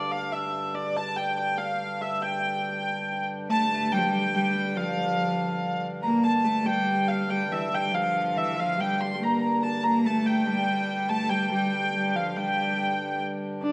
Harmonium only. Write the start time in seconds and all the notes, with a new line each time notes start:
Already playing: G2 D3
3.50 G2 D3
8.56 G2 D3
13.63 G2 D3